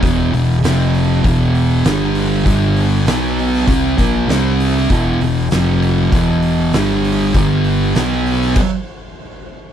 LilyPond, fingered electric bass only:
\new Staff \with { instrumentName = "Fingered electric bass" } { \clef bass \time 4/4 \key e \dorian \tempo 4 = 98 e,,8 e,,8 f,,4 e,,4 g,,4 | g,,4 b,,4 c,8 bes,,8 c,4 | e,,8 e,,8 f,,4 e,,4 g,,4 | g,,4 b,,4 r2 | }